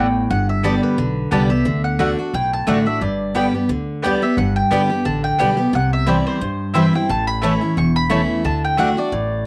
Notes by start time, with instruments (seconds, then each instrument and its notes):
Already playing: upright bass A1, steel-string acoustic guitar A2, mandolin G5
0.30 upright bass G1, steel-string acoustic guitar G2, mandolin F#5
0.49 mandolin E5
0.63 steel-string acoustic guitar D3 G3 B3 G4, mandolin B3 G4 D5 A5
0.83 mandolin B4
0.98 upright bass B1, steel-string acoustic guitar D3
1.31 upright bass C2, steel-string acoustic guitar D3 G3 B3 G4, mandolin B3 G4 D5 A5
1.50 steel-string acoustic guitar B3 G4, mandolin E5
1.65 upright bass D2, steel-string acoustic guitar D3
1.84 mandolin F#5
1.99 steel-string acoustic guitar D3 A3 D4 F#4, mandolin A3 F#4 D5 F#5
2.19 steel-string acoustic guitar D4 F#4
2.34 upright bass B1, steel-string acoustic guitar A2, mandolin G5
2.53 mandolin A5
2.67 upright bass A1, steel-string acoustic guitar D3 A3 D4 F#4, mandolin A3 F#4 D5 F#5
2.86 steel-string acoustic guitar D4 F#4, mandolin E5
3.01 upright bass G1, steel-string acoustic guitar G2, mandolin D5
3.34 steel-string acoustic guitar D3 G3 B3 G4, mandolin B3 G4 D5 G5
3.54 steel-string acoustic guitar B3 G4
3.69 upright bass D2, steel-string acoustic guitar D3
4.02 steel-string acoustic guitar D3 G3 B3 G4, mandolin B3 G4 D5 G5
4.22 steel-string acoustic guitar B3 G4, mandolin E5
4.37 upright bass G1, steel-string acoustic guitar G2, mandolin F#5
4.56 mandolin G5
4.71 upright bass G1, steel-string acoustic guitar D3 G3 B3 G4, mandolin B3 G4 D5 G5
4.90 steel-string acoustic guitar B3 G4
5.05 upright bass A1, steel-string acoustic guitar D3, mandolin A5
5.24 mandolin G5
5.39 upright bass B1, steel-string acoustic guitar D3 G3 B3 G4, mandolin B3 G4 D5 G5
5.57 steel-string acoustic guitar B3 G4
5.73 upright bass C2, steel-string acoustic guitar C3, mandolin F#5
5.93 mandolin E5
6.06 steel-string acoustic guitar E3 G3 C4 E4, mandolin C4 E4 C5 D5 G5
6.27 mandolin C5
6.41 upright bass G2, steel-string acoustic guitar G2
6.74 steel-string acoustic guitar E3 G3 C4 E4, mandolin C4 E4 C5 E5 G5
6.93 steel-string acoustic guitar C4 E4, mandolin G5
7.09 upright bass A1, steel-string acoustic guitar A2, mandolin A5
7.27 mandolin B5
7.42 steel-string acoustic guitar E3 A3 C#4 E4, mandolin A3 E4 C#5 A5
7.61 steel-string acoustic guitar C#4 E4
7.77 upright bass E1, steel-string acoustic guitar E2, mandolin C#6
7.96 mandolin B5
8.10 steel-string acoustic guitar E3 A3 C#4 E4, mandolin A3 E4 C#5 A5
8.45 upright bass D2, steel-string acoustic guitar D3, mandolin A5
8.65 mandolin G5
8.77 steel-string acoustic guitar D3 A3 D4 F#4, mandolin A3 F#4 D5 F#5
8.97 steel-string acoustic guitar D4 F#4, mandolin D5
9.12 upright bass A1, steel-string acoustic guitar A2